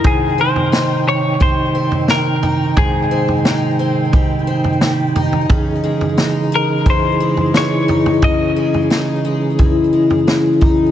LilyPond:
<<
  \new Staff \with { instrumentName = "Clean electric guitar" } { \time 4/4 \key aes \major \tempo 4 = 88 aes'8 c''4 des''8 c''4 bes'4 | aes'2 r2 | r4. bes'8 c''4 des''4 | ees''4 r2. | }
  \new Staff \with { instrumentName = "Tonewheel organ" } { \time 4/4 \key aes \major ees'1~ | ees'1~ | ees'1 | des'1 | }
  \new Staff \with { instrumentName = "Tonewheel organ" } { \clef bass \time 4/4 \key aes \major <c ees g''>1~ | <c ees g''>1 | <des fes aes'>1~ | <des fes aes'>1 | }
  \new Staff \with { instrumentName = "Twelve-string acoustic guitar" } { \clef bass \time 4/4 \key aes \major aes,8 c'8 ees'4 g8 c'4 ees'8 | aes,8 c'8 ees'8 c'8 g8 c'8 g8 ees'8 | des8 aes8 ees'8 aes8 fes8 aes8 fes8 ees'8 | des8 aes8 ees'8 aes8 fes8 aes8 fes8 ees'8 | }
  \new DrumStaff \with { instrumentName = "Drums" } \drummode { \time 4/4 <bd tomfh>8. tomfh16 sn4 <bd tomfh>8. tomfh16 sn8 tomfh8 | <bd tomfh>8. tomfh16 sn4 <bd tomfh>8. tomfh16 sn8 tomfh16 tomfh16 | <bd tomfh>8. tomfh16 sn4 <bd tomfh>8. tomfh16 sn8 tomfh16 tomfh16 | <bd tomfh>8. tomfh16 sn4 <bd tomfh>8. tomfh16 sn8 <bd tomfh>8 | }
>>